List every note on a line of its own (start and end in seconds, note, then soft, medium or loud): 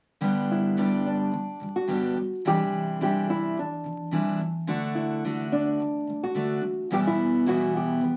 0.21 0.76 G2 medium
0.21 0.77 D3 medium
0.21 0.77 G3 medium
0.21 0.76 B3 medium
0.21 0.78 D4 medium
0.21 0.78 G4 medium
0.52 1.06 E4 medium
0.77 1.30 G2 medium
0.77 1.33 D3 medium
0.77 1.33 G3 medium
0.77 1.33 B3 medium
0.77 1.89 D4 medium
0.77 1.89 G4 medium
1.06 1.78 D4 medium
1.31 1.55 G2 soft
1.31 1.56 D3 soft
1.31 1.56 G3 soft
1.60 1.83 G2 soft
1.60 1.83 D3 soft
1.60 1.84 G3 soft
1.76 2.47 F#4 medium
1.87 2.15 G2 medium
1.87 2.16 D3 medium
1.87 2.16 G3 medium
1.87 2.16 B3 medium
1.87 2.17 D4 medium
1.87 2.17 G4 medium
2.16 2.39 G2 soft
2.16 2.39 D3 soft
2.16 2.40 G3 soft
2.45 2.99 C3 medium
2.45 3.00 E3 medium
2.45 3.00 G3 medium
2.45 3.01 D4 medium
2.45 3.01 E4 medium
2.45 2.98 G4 medium
3.01 3.56 C3 medium
3.01 3.56 E3 medium
3.01 3.56 G3 medium
3.01 3.60 D4 medium
3.01 3.57 E4 medium
3.01 3.29 G4 medium
3.30 3.58 E4 medium
3.57 3.79 C3 soft
3.57 3.80 E3 medium
3.57 4.37 D4 medium
3.84 4.06 C3 soft
3.84 4.07 E3 soft
4.11 4.37 C3 medium
4.11 4.40 E3 medium
4.11 4.40 G3 medium
4.11 4.40 D4 medium
4.11 4.40 E4 medium
4.39 4.61 C3 soft
4.39 4.63 E3 medium
4.67 5.23 D3 medium
4.67 5.23 A3 medium
4.67 5.23 D4 medium
4.67 5.24 F#4 medium
4.95 5.47 E4 medium
5.25 5.79 D3 medium
5.25 5.79 A3 medium
5.25 5.80 D4 medium
5.25 5.80 F#4 medium
5.52 6.23 D4 medium
5.80 6.01 D3 soft
5.80 6.02 A3 medium
6.07 6.29 D3 soft
6.07 6.30 A3 soft
6.23 6.87 F#4 medium
6.35 6.60 D3 medium
6.35 6.62 A3 medium
6.35 6.63 D4 medium
6.35 6.63 F#4 medium
6.61 6.84 D3 soft
6.61 6.85 A3 soft
6.90 7.45 E2 medium
6.90 7.45 B2 medium
6.90 7.46 E3 medium
6.90 7.46 G3 medium
6.90 7.47 B3 medium
6.90 7.46 E4 medium
6.90 6.99 G4 medium
7.07 7.48 E4 medium
7.46 8.00 E2 medium
7.46 8.01 B2 medium
7.46 8.02 E3 medium
7.46 8.17 G3 medium
7.46 8.17 B3 medium
7.46 8.02 E4 medium
7.46 7.73 F#4 medium
7.77 8.17 G4 medium
8.01 8.17 E2 medium
8.01 8.17 B2 soft
8.01 8.17 E3 medium